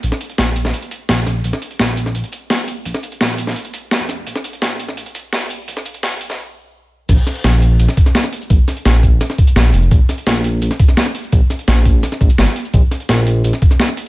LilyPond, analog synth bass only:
\new Staff \with { instrumentName = "Analog synth bass" } { \clef bass \time 4/4 \key c \phrygian \tempo 4 = 170 bes,,16 r8. bes,,4 r4 bes,,8 bes,,8 | bes,,16 r8. bes,,4 bes,,16 r4. r16 | bes,,16 r8. bes,,4 r4 r16 f,,8. | bes,,16 r8. bes,,4 bes,,16 r4. r16 |
bes,,16 r8. bes,,4 r2 | bes,,16 r8. bes,,4 bes,,16 r4. r16 | bes,,16 r8. bes,,4 r4 bes,,8 f,,8 | bes,,16 r8. bes,,4 bes,,16 r4. r16 |
bes,,16 r8. bes,,4 r8 bes,,16 r16 aes,,16 r8. | bes,,16 r8. bes,,4 bes,,16 r4. r16 | }